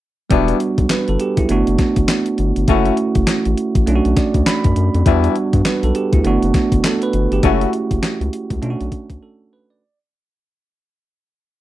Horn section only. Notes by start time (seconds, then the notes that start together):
0.30 E3 G3 B3 D4 E4
2.68 F#3 A3 C#4 E4 F#4
5.05 E3 G3 B3 D4 E4
7.43 F#3 A3 C#4 E4 F#4